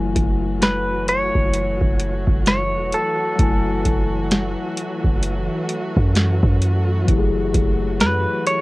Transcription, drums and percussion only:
0.16 kick, closed hi-hat
0.62 snare, closed hi-hat
1.08 closed hi-hat
1.35 kick
1.54 closed hi-hat
1.81 kick
2.00 closed hi-hat
2.27 kick
2.46 snare, closed hi-hat
2.92 closed hi-hat
3.39 kick, closed hi-hat
3.85 kick, closed hi-hat
4.31 snare, closed hi-hat
4.77 closed hi-hat
5.04 kick
5.23 closed hi-hat
5.69 closed hi-hat
5.96 kick
6.15 snare, closed hi-hat
6.43 kick
6.62 closed hi-hat
7.08 kick, closed hi-hat
7.54 kick, closed hi-hat
8.00 snare, closed hi-hat
8.47 closed hi-hat

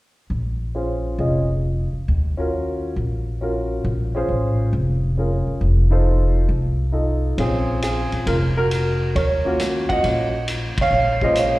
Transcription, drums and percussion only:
7.38 kick, ride
7.82 hi-hat pedal, ride
8.12 ride
8.27 kick, ride
8.71 hi-hat pedal, ride
9.16 kick, ride
9.59 snare, hi-hat pedal, ride
9.90 kick, ride
10.04 kick, ride
10.48 hi-hat pedal, ride
10.78 kick, ride
11.21 kick
11.35 hi-hat pedal, ride

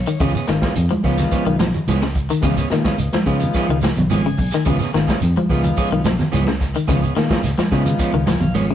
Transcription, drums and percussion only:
0.06 closed hi-hat, shekere
0.20 kick, closed hi-hat, high conga, low conga, shekere
0.35 shekere
0.47 snare, closed hi-hat
0.62 kick, snare, closed hi-hat, high conga, shekere
0.75 closed hi-hat, high conga, shekere
0.90 closed hi-hat, high conga
1.03 kick, open hi-hat, shekere
1.18 snare, closed hi-hat, low conga, shekere
1.31 kick, closed hi-hat, high conga, shekere
1.46 closed hi-hat
1.59 snare, closed hi-hat, high conga, shekere
1.74 closed hi-hat, low conga, shekere
1.88 closed hi-hat, high conga, shekere
2.01 snare, closed hi-hat
2.15 kick, closed hi-hat, shekere
2.29 closed hi-hat, shekere
2.42 kick, closed hi-hat, high conga, low conga, shekere
2.57 snare, shekere
2.70 snare, closed hi-hat
2.84 kick, snare, high conga, shekere
2.98 closed hi-hat, high conga, shekere
3.13 snare, closed hi-hat, high conga
3.26 kick, closed hi-hat, shekere
3.40 closed hi-hat, low conga, shekere
3.54 kick, closed hi-hat, high conga, shekere
3.69 closed hi-hat
3.81 snare, closed hi-hat, high conga, shekere
3.96 closed hi-hat, low conga, shekere
4.10 closed hi-hat, high conga, shekere
4.26 closed hi-hat
4.37 kick, open hi-hat, shekere
4.51 snare, closed hi-hat, shekere
4.65 kick, closed hi-hat, high conga, low conga, shekere
4.79 snare, shekere
4.95 snare, closed hi-hat
5.08 kick, snare, closed hi-hat, high conga, shekere
5.21 closed hi-hat, high conga, shekere
5.36 closed hi-hat, high conga
5.50 kick, open hi-hat, shekere
5.63 closed hi-hat, low conga, shekere
5.77 kick, closed hi-hat, high conga, shekere
5.92 closed hi-hat
6.04 snare, closed hi-hat, high conga, shekere
6.19 snare, closed hi-hat, low conga, shekere
6.33 closed hi-hat, high conga, shekere
6.46 snare, closed hi-hat, high conga
6.61 kick, snare, closed hi-hat, shekere
6.75 closed hi-hat, shekere
6.89 kick, closed hi-hat, high conga, low conga, shekere
7.04 shekere
7.16 snare, closed hi-hat
7.30 kick, snare, high conga, shekere
7.43 snare, closed hi-hat, high conga, shekere
7.58 snare, closed hi-hat, high conga
7.72 kick, snare, closed hi-hat, high conga, shekere
7.85 closed hi-hat, low conga, shekere
7.99 kick, closed hi-hat, high conga, shekere
8.14 closed hi-hat
8.27 snare, closed hi-hat, high conga, shekere
8.40 closed hi-hat, low conga, shekere
8.54 closed hi-hat, high conga, shekere
8.68 closed hi-hat

